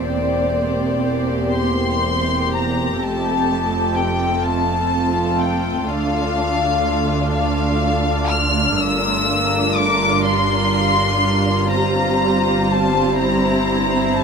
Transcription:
Already playing: C4 C5
0.02 E1 E2 A#3 G4 D5
1.56 C6
2.55 A#5
3.02 F1 F2 A3 C4 A4 A5
3.96 G5
4.43 F4 A5
5.39 G5
5.87 D2 D4 F5
7.33 F5
8.29 F6
8.78 G1 G2 F4 A#4 E6
9.75 D6
10.25 G3 C6
11.71 C4 C5 A#5
12.70 A5
13.18 E4 A#5
14.17 A5

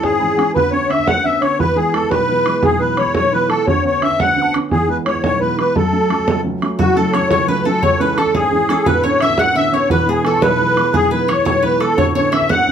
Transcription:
Already playing: E3 G#3 C#4
0.03 G#1 G#4 G#5, bodhran
0.20 E3 G#3 C#4 G#5 B5, bodhran
0.37 E3 G#3 C#4 F#5 G#5, bodhran
0.55 D2 B4 B5, bodhran
0.71 D3 B3 C#4 C#5 C#6
0.89 D3 B3 C#4 E5 E6, bodhran
0.99 bodhran
1.07 D2 F#5 F#6, bodhran
1.24 D3 B3 C#4 E5 E6, bodhran
1.41 D3 B3 C#4 C#5 C#6, bodhran
1.59 E2 B4 B5, bodhran
1.76 E3 G#3 B3 G#4 G#5
1.93 E3 G#3 B3 A4 A5, bodhran
2.03 bodhran
2.10 B1 B4 C#6, bodhran
2.15 B5
2.28 E3 G#3 B3, bodhran
2.46 E3 G#3 B3, bodhran
2.63 B1 G#4 G#5, bodhran
2.80 E3 G#3 B3 B4 B5
2.97 E3 G#3 B3 C#5, bodhran
3.06 bodhran
3.15 B1 C#5 C#6, bodhran
3.32 E3 G#3 B3 B4 B5, bodhran
3.49 E3 G#3 B3 A4 A5, bodhran
3.67 D2 C#5 C#6, bodhran
3.84 D3 B3 C#4 C#5 C#6
4.01 D3 B3 C#4 E5 E6, bodhran
4.12 bodhran
4.19 D2 F#5 F#6, bodhran
4.36 D3 B3 C#4, bodhran
4.42 A5
4.54 D3 B3 C#4, bodhran
4.71 E2 G#4 G#5, bodhran
4.88 E3 G#3 B3 B4
5.06 E3 G#3 B3 C#5, bodhran
5.15 bodhran
5.23 B1 C#5 C#6, bodhran
5.40 E3 G#3 B3 B4 B5, bodhran
5.58 E3 G#3 B3 B4 B5, bodhran
5.76 F#2 A4 A5, bodhran
5.92 F#3 A3 C#4
6.10 F#3 A3 C#4, bodhran
6.19 bodhran
6.27 C#2, bodhran
6.44 F#3 A3 C#4, bodhran
6.62 F#3 A3 C#4, bodhran
6.79 F#1 F#2 F#4 F#5, bodhran
6.95 F#3 A3 C#4 A4 A5
7.13 F#3 A3 C#4 C#5 C#6, bodhran
7.22 bodhran
7.30 C#2 C#5 C#6, bodhran
7.47 F#3 A3 C#4 B4 B5, bodhran
7.65 F#3 A3 C#4 A4 A5
7.82 C#2 C#5 C#6, bodhran
7.99 E3 G#3 C#4 B4 B5
8.17 E3 G#3 C#4 A4 A5, bodhran
8.26 bodhran
8.34 G#1 G#4 G#5, bodhran
8.52 E3 G#3 C#4, bodhran
8.69 E3 G#3 C#4 A4, bodhran
8.86 D1 D2 B4 B5, bodhran
9.04 D3 B3 C#4 C#5 C#6
9.21 D3 B3 C#4 E5 E6, bodhran
9.29 bodhran
9.38 D2 F#5 F#6, bodhran
9.55 D3 B3 C#4 E5 E6, bodhran
9.72 D3 B3 C#4 C#5 C#6
9.89 E1 E2 B4 B5, bodhran
10.06 E3 G#3 B3 G#4 B5
10.13 G#5
10.24 E3 G#3 B3 A4, bodhran
10.33 C#6, bodhran
10.42 B1 B4 B5, bodhran
10.59 E3 G#3 B3, bodhran
10.76 E3 G#3 B3, bodhran
10.94 B1 G#4 G#5, bodhran
11.11 E3 G#3 B3 B4 B5
11.28 E3 G#3 B3 C#5 C#6, bodhran
11.38 bodhran
11.45 B1 C#5 C#6, bodhran
11.62 E3 G#3 B3 B4 B5, bodhran
11.80 E3 G#3 B3 A4 A5, bodhran
11.97 D1 D2 C#5 C#6, bodhran
12.15 D3 B3 C#4 C#5 C#6
12.32 D3 B3 C#4 E5 E6, bodhran
12.41 bodhran
12.49 D2 F#5 F#6, bodhran
12.67 D3 B3 C#4, bodhran

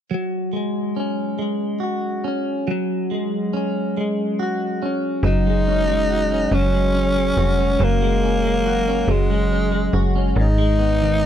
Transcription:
0.11 F#3
0.53 G#3
0.96 C#4
1.39 G#3
1.80 F#4
2.24 C#4
2.67 F#3
3.11 G#3
3.53 C#4
3.97 G#3
4.39 F#4
4.82 C#4
5.23 F#1 F#3 D#4
5.47 G#3
5.68 C#4
5.89 G#3
6.10 F#4
6.31 C#4
6.52 F#1 F#3 C#4
6.74 G#3
6.95 C#4
7.16 G#3
7.37 F1 F#4
7.59 C#4
7.79 F#1 F#3
7.84 A#3
8.02 G#3
8.24 C#4
8.44 G#3
8.66 F#4
8.88 C#4
9.08 F#1 F#3 G#3
9.31 G#3
9.52 C#4
9.72 G#3
9.93 F#1 F#4
10.16 C#4
10.36 G#1 G#2
10.41 D#4
10.58 G#3
10.79 B3
11.02 D#3

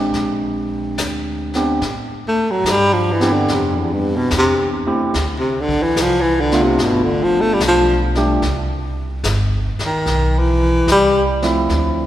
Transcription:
Already playing: A1 G#3 C4 D4 G4
0.14 A#1, brush sweep, snare
0.98 D2, snare, hi-hat pedal
1.54 B3 C4 D4 G4, snare
1.81 A2, brush sweep, snare
2.28 A3
2.51 F#3
2.64 G2, snare, hi-hat pedal
2.70 G3
2.93 F3
3.11 E3
3.21 B3 C4 D4 G4, snare
3.33 D3
3.48 F2, brush sweep, snare
3.54 C3
3.75 E2
3.93 G2
4.16 B2
4.31 E2, snare, hi-hat pedal
4.37 C3
4.87 A3 C4 E4 G4, muted upright bass stroke
5.14 D2, brush sweep, snare
5.39 C3
5.61 D3
5.69 kick
5.82 E3
5.96 C2, snare, hi-hat pedal
6.02 F3
6.21 E3
6.40 D3
6.51 A3 B3 D4 F4, snare
6.63 C3
6.78 G1, brush sweep, snare
6.84 B2
7.03 D3
7.23 F3
7.41 A3
7.54 G3
7.60 B1, snare, hi-hat pedal
7.68 F3
8.15 G3 A3 D4 G4, snare
8.42 C2, brush sweep, snare
9.24 G1, snare, hi-hat pedal
9.78 muted upright bass stroke, snare
9.86 D#3
10.06 B1, brush sweep, snare
10.39 E3
10.87 C2, snare, hi-hat pedal
10.91 G3
11.42 F3 A3 C4 E4, snare
11.69 D2, brush sweep, snare

